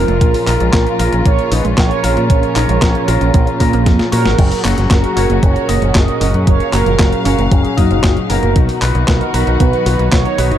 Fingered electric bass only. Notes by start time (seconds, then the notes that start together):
0.08 F1
0.21 A#1
0.47 A#1
0.60 A#1
0.73 A#1
1.00 A#1
1.13 A#1
1.25 A#1
1.52 A#1
1.65 A#1
1.78 A#1
2.04 A#1
2.17 A#2
2.30 A#1
2.56 A#1
2.69 A#1
2.82 A#1
3.08 A#1
3.21 A#1
3.34 A#1
3.60 A#2
3.73 A#1
3.86 F2
4.13 A#2
4.26 G#1
4.39 F#1
4.65 F#1
4.78 F#1
4.91 F#1
5.17 F#1
5.30 F#1
5.43 F#1
5.69 F#1
5.82 F#1
5.95 F#1
6.21 F#1
6.34 F#2
6.47 F#1
6.73 F#1
6.86 F#1
6.99 F#1
7.25 F#1
7.38 F#1
7.52 F#1
7.78 F#2
7.91 F#1
8.04 F#1
8.30 F#1
8.43 F#1
8.56 B1
8.82 B1
8.95 B1
9.08 B1
9.34 B1
9.47 B1
9.60 B1
9.86 B1
9.99 B1
10.12 B1
10.38 B1
10.51 F#1